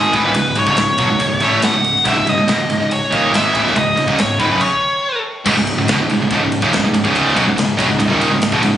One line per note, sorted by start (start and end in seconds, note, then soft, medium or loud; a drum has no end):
0.00 0.12 G#1 medium
0.00 0.14 G#2 medium
0.00 0.14 D#3 medium
0.00 0.15 G#3 medium
0.00 0.14 G#4 medium
0.13 0.23 A1 medium
0.13 0.24 A2 medium
0.13 0.25 E3 loud
0.13 0.58 B4 medium
0.13 kick loud
0.13 ride medium
0.23 0.34 D#1 loud
0.23 0.34 D#2 medium
0.23 0.35 A#2 medium
0.34 0.55 C#1 medium
0.34 0.53 C#2 medium
0.34 0.53 G#2 medium
0.34 kick loud
0.34 ride loud
0.55 0.66 C#1 medium
0.55 0.65 C#2 medium
0.55 0.66 G#2 medium
0.55 0.78 C#5 medium
0.55 ride medium
0.66 0.76 C#1 medium
0.66 0.76 C#2 medium
0.66 0.76 G#2 loud
0.66 kick loud
0.76 0.97 C#1 medium
0.76 0.95 C#2 medium
0.76 0.95 G#2 medium
0.76 1.60 C#5 medium
0.76 snare loud
0.76 ride medium
0.98 1.07 B1 medium
0.98 1.09 B2 medium
0.98 1.09 F#3 loud
0.98 kick loud
0.98 ride medium
1.08 1.19 C#1 medium
1.08 1.20 C#2 medium
1.08 1.20 G#2 medium
1.20 1.40 C#1 medium
1.20 1.38 C#2 medium
1.20 1.38 G#2 medium
1.20 kick medium
1.20 ride medium
1.40 1.71 A1 medium
1.40 1.74 A2 medium
1.40 1.74 E3 medium
1.40 1.74 A3 loud
1.40 ride medium
1.62 2.03 F#5 medium
1.62 snare loud
1.62 ride loud
1.73 1.93 C#1 medium
1.73 1.91 C#2 medium
1.73 1.91 G#2 medium
1.84 ride medium
1.96 snare soft
2.05 2.14 C#1 medium
2.05 2.16 C#2 loud
2.05 2.16 G#2 loud
2.05 2.29 E5 loud
2.05 kick loud
2.05 ride medium
2.15 2.25 C#1 medium
2.15 2.27 C#2 medium
2.15 2.27 G#2 medium
2.27 2.36 C#1 medium
2.27 2.38 C#2 medium
2.27 2.38 G#2 medium
2.27 2.88 D#5 medium
2.27 ride medium
2.36 2.46 C#1 medium
2.36 2.48 C#2 medium
2.36 2.49 G#2 medium
2.47 2.57 E1 medium
2.47 2.58 E2 medium
2.47 2.59 B2 loud
2.47 snare loud
2.47 ride medium
2.59 2.69 C#1 medium
2.59 2.69 C#2 medium
2.59 2.70 G#2 medium
2.69 2.79 C#1 medium
2.69 2.80 C#2 medium
2.69 2.81 G#2 medium
2.69 ride medium
2.80 2.99 C#1 medium
2.80 2.98 C#2 medium
2.80 2.98 G#2 medium
2.91 3.31 C#5 medium
2.91 ride medium
3.12 3.30 D#1 medium
3.12 3.33 D#2 medium
3.12 3.33 A#2 medium
3.12 3.33 D#3 loud
3.12 kick loud
3.12 ride medium
3.31 3.52 G#1 medium
3.31 3.54 G#2 medium
3.31 3.54 D#3 medium
3.31 3.54 G#3 loud
3.31 ride medium
3.35 3.74 E5 medium
3.35 snare loud
3.55 3.64 A1 medium
3.55 3.65 A2 medium
3.55 3.65 E3 loud
3.55 kick loud
3.55 ride medium
3.64 3.74 D#1 loud
3.64 3.76 D#2 medium
3.64 3.76 A#2 medium
3.64 snare soft
3.75 3.95 C#1 medium
3.75 3.93 C#2 medium
3.75 3.93 G#2 medium
3.75 4.16 D#5 medium
3.75 kick loud
3.75 ride medium
3.96 4.06 C#1 medium
3.96 4.07 C#2 medium
3.96 4.08 G#2 medium
3.96 ride medium
4.07 4.16 C#1 medium
4.07 4.18 C#2 medium
4.07 4.18 G#2 loud
4.07 kick loud
4.17 4.37 C#1 medium
4.17 4.36 C#2 medium
4.17 4.36 G#2 medium
4.17 4.40 C#5 medium
4.17 snare loud
4.17 ride medium
4.40 4.46 G#1 loud
4.40 4.49 G#2 medium
4.40 4.50 D#3 loud
4.40 4.61 B4 medium
4.40 kick loud
4.40 ride medium
4.47 4.58 F#1 medium
4.47 4.59 F#2 medium
4.47 4.60 C#3 medium
4.61 5.21 C#5 medium
4.61 kick loud
4.61 crash medium
5.46 5.54 C#1 medium
5.46 5.55 C#2 medium
5.46 5.55 G#2 loud
5.46 8.77 C#3 medium
5.46 8.77 G#3 medium
5.46 8.77 D#4 medium
5.46 8.77 E4 medium
5.46 kick loud
5.46 crash loud
5.54 5.75 C#1 medium
5.54 5.73 C#2 medium
5.54 5.73 G#2 medium
5.54 snare soft
5.67 ride medium
5.76 5.86 C#1 medium
5.76 5.88 C#2 medium
5.76 5.88 G#2 medium
5.87 5.97 E1 loud
5.87 5.98 E2 medium
5.87 5.99 B2 loud
5.87 snare loud
5.87 ride loud
5.98 6.07 C#1 medium
5.98 6.09 C#2 medium
5.98 6.09 G#2 medium
6.08 6.18 C#1 medium
6.08 6.19 C#2 medium
6.08 6.20 G#2 medium
6.08 ride medium
6.19 6.29 C#1 medium
6.19 6.30 C#2 medium
6.19 6.31 G#2 medium
6.31 6.39 C#1 medium
6.31 6.40 C#2 medium
6.31 6.40 G#2 medium
6.31 kick loud
6.31 ride medium
6.40 6.60 C#1 medium
6.40 6.57 C#2 medium
6.40 6.58 G#2 medium
6.52 ride medium
6.62 6.70 F#1 loud
6.62 6.72 F#2 medium
6.62 6.72 C#3 loud
6.62 kick loud
6.70 6.80 C#1 medium
6.70 6.82 C#2 medium
6.70 6.82 G#2 medium
6.70 snare loud
6.70 ride loud
6.81 6.91 C#1 medium
6.81 6.92 C#2 medium
6.81 6.93 G#2 medium
6.91 7.02 C#1 medium
6.91 7.03 C#2 medium
6.91 7.04 G#2 medium
6.91 ride medium
7.04 7.34 C#1 loud
7.04 7.35 C#2 loud
7.04 7.35 G#2 loud
7.04 7.36 C#3 loud
7.04 kick loud
7.15 kick loud
7.15 ride loud
7.28 snare soft
7.35 7.45 B1 loud
7.35 7.45 B2 loud
7.35 7.46 F#3 loud
7.35 kick loud
7.35 ride medium
7.46 7.56 C#1 medium
7.46 7.56 C#2 medium
7.46 7.56 G#2 medium
7.56 7.76 C#1 medium
7.56 7.74 C#2 medium
7.56 7.74 G#2 medium
7.56 snare loud
7.56 ride loud
7.77 7.87 B1 loud
7.77 7.87 B2 medium
7.77 7.88 F#3 loud
7.77 kick loud
7.77 ride medium
7.87 7.98 C#1 medium
7.87 7.98 C#2 medium
7.87 7.99 G#2 medium
7.99 8.07 C#1 medium
7.99 8.09 C#2 medium
7.99 8.10 G#2 medium
7.99 kick medium
7.99 ride loud
8.07 8.28 D#1 loud
8.07 8.30 D#2 medium
8.07 8.30 A#2 loud
8.07 8.31 D#3 medium
8.21 ride medium
8.29 8.50 C#1 medium
8.29 8.48 C#2 medium
8.29 8.48 G#2 medium
8.42 snare loud
8.42 ride loud
8.52 8.60 E1 loud
8.52 8.62 E2 medium
8.52 8.62 B2 medium
8.52 kick loud
8.61 8.77 C#1 medium
8.61 8.77 C#2 medium
8.61 8.77 G#2 medium
8.61 ride medium